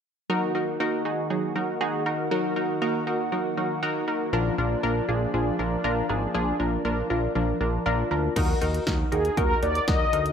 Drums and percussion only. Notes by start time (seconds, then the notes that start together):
8.36 kick, closed hi-hat, crash
8.62 closed hi-hat
8.74 closed hi-hat
8.87 kick, snare, closed hi-hat
9.12 closed hi-hat
9.25 closed hi-hat
9.37 kick, closed hi-hat
9.63 closed hi-hat
9.75 closed hi-hat
9.88 kick, snare, closed hi-hat
10.13 closed hi-hat
10.26 closed hi-hat